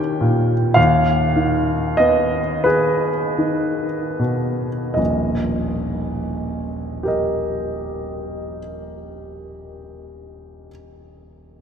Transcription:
0, 0, Header, 1, 2, 480
1, 0, Start_track
1, 0, Key_signature, -3, "major"
1, 0, Tempo, 1113173
1, 329, Tempo, 1221996
1, 809, Tempo, 1398601
1, 1289, Tempo, 1591512
1, 1769, Tempo, 1385681
1, 1770, Time_signature, 12, 3, 24, 8
1, 2729, Tempo, 1418440
1, 4037, End_track
2, 0, Start_track
2, 0, Title_t, "Grand piano"
2, 0, Program_c, 0, 0
2, 0, Control_c, 0, 64, 127
2, 0, Note_on_c, 0, 39, 45
2, 0, Note_on_c, 0, 51, 36
2, 0, Note_on_c, 0, 61, 37
2, 0, Note_on_c, 0, 67, 38
2, 0, Note_on_c, 0, 79, 63
2, 90, Note_on_c, 0, 46, 34
2, 232, Note_off_c, 0, 51, 0
2, 301, Note_off_c, 0, 39, 0
2, 321, Note_on_c, 0, 77, 64
2, 326, Note_off_c, 0, 79, 0
2, 330, Note_off_c, 0, 46, 0
2, 330, Note_on_c, 0, 39, 42
2, 339, Control_c, 0, 64, 0
2, 341, Note_off_c, 0, 61, 0
2, 342, Note_off_c, 0, 67, 0
2, 430, Control_c, 0, 64, 127
2, 564, Note_on_c, 0, 51, 31
2, 804, Note_on_c, 0, 75, 61
2, 806, Note_off_c, 0, 77, 0
2, 813, Note_on_c, 0, 59, 34
2, 948, Note_off_c, 0, 51, 0
2, 1033, Note_on_c, 0, 71, 50
2, 1038, Note_off_c, 0, 75, 0
2, 1040, Note_on_c, 0, 68, 33
2, 1189, Note_off_c, 0, 59, 0
2, 1289, Note_on_c, 0, 51, 30
2, 1433, Note_off_c, 0, 68, 0
2, 1531, Note_off_c, 0, 71, 0
2, 1533, Note_on_c, 0, 47, 25
2, 1681, Note_off_c, 0, 51, 0
2, 1758, Note_off_c, 0, 39, 0
2, 1758, Note_on_c, 0, 75, 32
2, 1767, Note_on_c, 0, 27, 29
2, 1767, Note_on_c, 0, 34, 28
2, 1770, Note_off_c, 0, 47, 0
2, 1781, Control_c, 0, 64, 0
2, 1893, Control_c, 0, 64, 127
2, 2482, Note_on_c, 0, 67, 24
2, 2489, Note_on_c, 0, 70, 24
2, 2492, Note_off_c, 0, 75, 0
2, 2497, Note_on_c, 0, 75, 23
2, 3015, Note_off_c, 0, 27, 0
2, 3015, Note_off_c, 0, 34, 0
2, 3714, Note_off_c, 0, 67, 0
2, 3721, Note_off_c, 0, 70, 0
2, 3729, Note_off_c, 0, 75, 0
2, 4037, End_track
0, 0, End_of_file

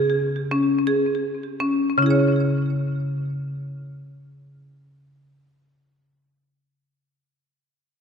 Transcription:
0, 0, Header, 1, 2, 480
1, 0, Start_track
1, 0, Key_signature, 4, "minor"
1, 0, Tempo, 700935
1, 837, Tempo, 757576
1, 1317, Time_signature, 4, 2, 24, 8
1, 1317, Tempo, 781250
1, 5018, End_track
2, 0, Start_track
2, 0, Title_t, "Marimba"
2, 0, Program_c, 0, 12
2, 0, Note_on_c, 0, 49, 61
2, 0, Note_on_c, 0, 68, 67
2, 351, Note_off_c, 0, 68, 0
2, 352, Note_on_c, 0, 61, 62
2, 591, Note_off_c, 0, 61, 0
2, 596, Note_on_c, 0, 68, 53
2, 1076, Note_off_c, 0, 68, 0
2, 1077, Note_on_c, 0, 61, 57
2, 1289, Note_off_c, 0, 49, 0
2, 1313, Note_off_c, 0, 61, 0
2, 1315, Note_on_c, 0, 49, 66
2, 1320, Note_on_c, 0, 61, 47
2, 1344, Note_on_c, 0, 64, 49
2, 1367, Note_on_c, 0, 68, 46
2, 1394, Note_on_c, 0, 73, 47
2, 4134, Note_off_c, 0, 49, 0
2, 4137, Note_off_c, 0, 61, 0
2, 4149, Note_off_c, 0, 64, 0
2, 4160, Note_off_c, 0, 68, 0
2, 4173, Note_off_c, 0, 73, 0
2, 5018, End_track
0, 0, End_of_file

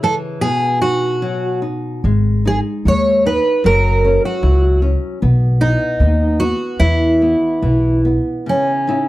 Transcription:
0, 0, Header, 1, 4, 480
1, 0, Start_track
1, 0, Key_signature, 4, "major"
1, 0, Tempo, 808625
1, 250, Time_signature, 2, 2, 24, 8
1, 1699, Tempo, 787402
1, 4099, Tempo, 832178
1, 5417, End_track
2, 0, Start_track
2, 0, Title_t, "Twelve-string acoustic guitar"
2, 0, Program_c, 0, 25
2, 22, Note_on_c, 0, 69, 85
2, 84, Note_off_c, 0, 69, 0
2, 245, Note_on_c, 0, 68, 90
2, 467, Note_off_c, 0, 68, 0
2, 485, Note_on_c, 0, 66, 68
2, 944, Note_off_c, 0, 66, 0
2, 1469, Note_on_c, 0, 68, 80
2, 1532, Note_off_c, 0, 68, 0
2, 1711, Note_on_c, 0, 73, 91
2, 1942, Note_off_c, 0, 73, 0
2, 1945, Note_on_c, 0, 71, 80
2, 2165, Note_off_c, 0, 71, 0
2, 2186, Note_on_c, 0, 70, 93
2, 2545, Note_off_c, 0, 70, 0
2, 2547, Note_on_c, 0, 66, 61
2, 2878, Note_off_c, 0, 66, 0
2, 3374, Note_on_c, 0, 63, 80
2, 3854, Note_on_c, 0, 66, 85
2, 3872, Note_off_c, 0, 63, 0
2, 4097, Note_on_c, 0, 64, 89
2, 4104, Note_off_c, 0, 66, 0
2, 4794, Note_off_c, 0, 64, 0
2, 5076, Note_on_c, 0, 61, 76
2, 5417, Note_off_c, 0, 61, 0
2, 5417, End_track
3, 0, Start_track
3, 0, Title_t, "Nylon-string guitar"
3, 0, Program_c, 1, 24
3, 0, Note_on_c, 1, 49, 60
3, 17, Note_on_c, 1, 52, 54
3, 225, Note_off_c, 1, 49, 0
3, 243, Note_off_c, 1, 52, 0
3, 245, Note_on_c, 1, 47, 57
3, 484, Note_on_c, 1, 63, 46
3, 718, Note_off_c, 1, 63, 0
3, 725, Note_on_c, 1, 54, 52
3, 961, Note_off_c, 1, 54, 0
3, 961, Note_on_c, 1, 63, 47
3, 1189, Note_off_c, 1, 47, 0
3, 1204, Note_off_c, 1, 63, 0
3, 1215, Note_on_c, 1, 56, 53
3, 1457, Note_on_c, 1, 63, 47
3, 1691, Note_off_c, 1, 63, 0
3, 1695, Note_off_c, 1, 56, 0
3, 1702, Note_on_c, 1, 56, 49
3, 1935, Note_off_c, 1, 56, 0
3, 1939, Note_on_c, 1, 63, 51
3, 2172, Note_off_c, 1, 63, 0
3, 2173, Note_on_c, 1, 54, 59
3, 2421, Note_on_c, 1, 61, 52
3, 2653, Note_off_c, 1, 61, 0
3, 2653, Note_on_c, 1, 64, 51
3, 2888, Note_off_c, 1, 64, 0
3, 2893, Note_on_c, 1, 61, 57
3, 3108, Note_off_c, 1, 54, 0
3, 3126, Note_off_c, 1, 61, 0
3, 3136, Note_on_c, 1, 59, 64
3, 3365, Note_off_c, 1, 59, 0
3, 3372, Note_on_c, 1, 59, 51
3, 3607, Note_off_c, 1, 59, 0
3, 3617, Note_on_c, 1, 59, 52
3, 3848, Note_off_c, 1, 59, 0
3, 3855, Note_on_c, 1, 59, 51
3, 4091, Note_off_c, 1, 59, 0
3, 4100, Note_on_c, 1, 52, 56
3, 4342, Note_on_c, 1, 59, 47
3, 4569, Note_off_c, 1, 52, 0
3, 4571, Note_off_c, 1, 59, 0
3, 4576, Note_on_c, 1, 52, 50
3, 4812, Note_off_c, 1, 52, 0
3, 4820, Note_on_c, 1, 59, 48
3, 5055, Note_off_c, 1, 59, 0
3, 5059, Note_on_c, 1, 49, 50
3, 5296, Note_on_c, 1, 61, 43
3, 5303, Note_on_c, 1, 63, 41
3, 5303, Note_on_c, 1, 64, 50
3, 5417, Note_off_c, 1, 49, 0
3, 5417, Note_off_c, 1, 61, 0
3, 5417, Note_off_c, 1, 63, 0
3, 5417, Note_off_c, 1, 64, 0
3, 5417, End_track
4, 0, Start_track
4, 0, Title_t, "Upright bass"
4, 0, Program_c, 2, 32
4, 1210, Note_on_c, 2, 32, 85
4, 1527, Note_off_c, 2, 32, 0
4, 1693, Note_on_c, 2, 39, 85
4, 2008, Note_off_c, 2, 39, 0
4, 2180, Note_on_c, 2, 30, 88
4, 2491, Note_off_c, 2, 30, 0
4, 2653, Note_on_c, 2, 37, 95
4, 2965, Note_off_c, 2, 37, 0
4, 3139, Note_on_c, 2, 35, 93
4, 3450, Note_off_c, 2, 35, 0
4, 3611, Note_on_c, 2, 39, 89
4, 3927, Note_off_c, 2, 39, 0
4, 4098, Note_on_c, 2, 40, 88
4, 4406, Note_off_c, 2, 40, 0
4, 4574, Note_on_c, 2, 35, 75
4, 4891, Note_off_c, 2, 35, 0
4, 5417, End_track
0, 0, End_of_file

